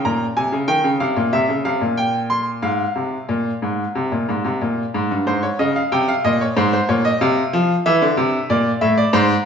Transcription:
0.05 0.24 A#2 medium
0.05 0.24 A#5 medium
0.37 0.52 C3 medium
0.37 0.56 G#5 medium
0.52 0.68 C#3 medium
0.68 0.83 D#3 medium
0.68 0.88 G5 medium
0.84 1.00 C#3 medium
1.00 1.16 C3 medium
1.00 1.20 F5 medium
1.16 1.32 A#2 medium
1.33 1.48 C3 medium
1.33 1.53 E5 medium
1.49 1.64 C#3 medium
1.65 1.80 C3 medium
1.65 1.85 F5 medium
1.81 2.60 A#2 medium
1.97 2.18 G5 medium
2.30 2.50 C6 medium
2.62 2.83 G#2 medium
2.62 4.90 F5 medium
2.96 3.16 C3 medium
3.29 3.49 A#2 medium
3.62 3.83 G#2 medium
3.95 4.11 C3 medium
4.12 4.28 A#2 medium
4.29 4.44 G#2 medium
4.44 4.60 C3 medium
4.61 4.82 A#2 medium
4.94 5.10 G#2 medium
5.11 5.26 G2 medium
5.27 5.47 G#2 medium
5.27 5.43 C5 medium
5.43 5.59 C#5 medium
5.59 5.80 C#3 medium
5.59 5.75 D#5 medium
5.76 5.92 F5 medium
5.92 6.12 C3 medium
5.92 6.08 G5 medium
6.08 6.24 F5 medium
6.24 6.45 A#2 medium
6.24 6.40 D#5 medium
6.41 6.56 C#5 medium
6.57 6.77 G#2 medium
6.57 6.71 C5 medium
6.73 6.89 C5 medium
6.89 7.09 A#2 medium
6.89 7.05 C#5 medium
7.05 7.21 D#5 medium
7.21 7.41 C3 medium
7.21 7.83 F5 medium
7.53 7.73 F3 medium
7.86 8.01 E3 loud
7.86 8.48 E5 medium
8.02 8.17 D3 medium
8.17 8.37 C3 medium
8.50 8.70 A#2 medium
8.50 8.70 D5 medium
8.81 9.01 A2 medium
8.81 8.97 E5 medium
8.97 9.13 D5 medium
9.13 9.33 G#2 loud
9.13 9.33 C5 medium

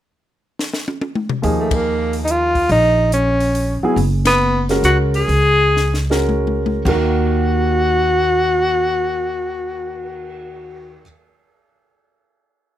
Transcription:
0.59 snare medium
0.74 snare medium
0.88 high tom medium
1.01 high tom medium
1.15 mid tom medium
1.29 floor tom medium
1.42 2.67 D#2 medium
1.42 2.61 F3 medium
1.42 2.62 A#3 medium
1.42 2.62 D#4 medium
1.42 2.62 G#4 medium
1.42 open hi-hat soft
1.60 1.77 A3 medium
1.71 kick medium
1.71 ride medium
1.76 2.16 A#3 medium
2.13 open hi-hat soft
2.25 2.32 D#4 medium
2.25 closed hi-hat soft
2.30 2.71 F4 loud
2.55 kick soft
2.55 open hi-hat soft
2.69 3.78 A#1 medium
2.69 3.10 D#4 loud
2.69 open hi-hat soft
3.12 3.79 C#4 medium
3.12 closed hi-hat soft
3.40 open hi-hat soft
3.55 open hi-hat soft
3.82 3.96 F#3 medium
3.82 3.96 B3 medium
3.82 3.96 E4 medium
3.82 3.97 G#4 medium
3.82 muted upright bass stroke soft
3.96 4.79 F#1 medium
3.96 open hi-hat soft
4.25 4.66 B3 medium
4.25 snare medium
4.25 ride medium
4.69 5.26 G#3 medium
4.69 5.27 C#4 medium
4.69 5.27 F#4 medium
4.69 5.27 A#4 medium
4.69 snare soft
4.69 open hi-hat soft
4.83 5.25 C#2 medium
4.83 4.98 F#4 medium
4.83 closed hi-hat medium
5.14 6.08 G#4 loud
5.14 open hi-hat soft
5.28 6.81 C#2 medium
5.28 open hi-hat soft
5.76 snare soft
5.94 snare soft
6.10 6.81 G#3 medium
6.10 6.82 C#4 medium
6.10 6.82 F#4 soft
6.10 6.82 A#4 medium
6.10 snare medium
6.29 mid tom medium
6.47 mid tom medium
6.66 mid tom medium
6.85 10.96 D#2 medium
6.85 11.00 D#2 medium
6.85 11.01 D#3 medium
6.85 11.02 A#3 medium
6.85 10.98 F#4 medium
6.85 11.02 F#4 medium
6.85 11.04 A#4 medium
6.85 kick medium
6.85 crash medium
7.26 cymbal swell soft

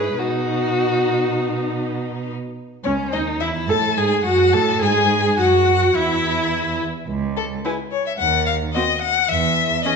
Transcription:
0.00 0.18 G#2 medium
0.00 0.18 E4 soft
0.00 0.19 G#4 soft
0.00 0.20 B4 medium
0.18 2.32 B2 soft
0.18 2.32 D#4 soft
0.18 2.24 D#4 medium
0.18 1.98 F#4 medium
2.84 3.14 C#2 soft
2.84 2.93 C#4 medium
2.84 3.15 C#4 medium
2.84 2.92 C#5 medium
3.12 3.42 D#2 soft
3.12 3.40 D#4 soft
3.12 3.44 D#4 medium
3.12 3.21 D#5 medium
3.40 3.71 E2 medium
3.40 3.49 E4 medium
3.40 3.71 E4 medium
3.40 3.48 E5 medium
3.69 3.99 A2 medium
3.69 3.77 A4 medium
3.69 3.99 A4 medium
3.69 3.99 A5 medium
3.97 4.25 G#2 medium
3.97 4.25 G#4 medium
3.97 4.24 G#5 medium
4.24 4.55 F#2 medium
4.24 4.55 F#4 medium
4.24 4.56 F#4 medium
4.24 4.54 F#5 medium
4.53 4.83 A2 medium
4.53 4.83 A4 medium
4.53 4.81 A4 medium
4.53 4.81 A5 medium
4.81 5.38 G#2 medium
4.81 5.39 G#4 medium
4.81 5.38 G#4 medium
4.81 5.37 G#5 medium
5.38 5.94 F#2 medium
5.38 5.95 F#4 medium
5.38 5.97 F#4 medium
5.38 5.96 F#5 medium
5.95 6.79 E2 medium
5.95 6.79 E4 medium
5.95 6.81 E4 medium
5.95 6.80 E5 medium
7.08 7.55 C#2 medium
7.37 7.45 A4 medium
7.65 7.73 E4 medium
7.65 7.73 G#4 medium
7.65 7.73 B4 medium
7.91 8.05 C#5 medium
8.07 8.12 E5 medium
8.19 8.65 D#2 medium
8.19 8.46 F#5 medium
8.46 8.54 F5 medium
8.74 8.84 C4 medium
8.74 8.83 F#4 medium
8.74 9.01 D#5 medium
9.02 9.30 F#5 medium
9.29 9.75 E2 medium
9.29 9.84 E5 medium
9.85 9.93 C#4 medium
9.85 9.94 G#4 medium
9.85 9.96 D#5 medium

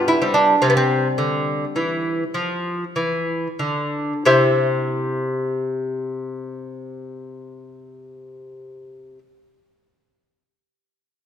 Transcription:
0.00 0.14 G2 soft
0.00 0.59 B3 soft
0.08 0.22 E4 medium
0.22 0.54 G3 soft
0.22 0.35 C4 soft
0.34 0.61 D4 medium
0.62 1.07 C3 medium
0.62 4.21 G3 soft
0.62 0.69 C4 medium
0.70 0.76 B3 medium
0.77 3.22 C4 medium
1.18 1.64 D3 soft
1.76 2.23 E3 soft
2.34 2.83 F3 soft
2.96 3.47 E3 soft
3.59 4.12 D3 soft
4.25 9.18 C3 medium
4.25 9.18 E4 soft
4.25 9.18 G4 soft
4.25 9.19 C5 soft
4.25 9.19 E5 soft

